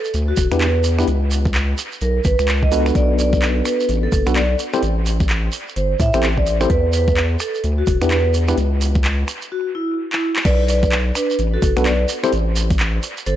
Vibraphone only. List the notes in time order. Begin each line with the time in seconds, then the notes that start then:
0.28 F#4
0.61 B4
2.02 A#4
2.25 B4
2.63 D#5
2.95 D5
3.19 D5
3.66 B4
4.03 A4
4.36 D5
5.76 C5
6.00 E5
6.38 D5
6.70 B4
6.94 B4
7.40 A4
7.78 F#4
8.11 B4
9.52 F#4
9.75 E4
10.13 E4
10.45 B4 D5
10.69 B4 D5
11.15 D4 B4
11.54 F#4 A4
11.85 B4 D5
13.26 A4 C5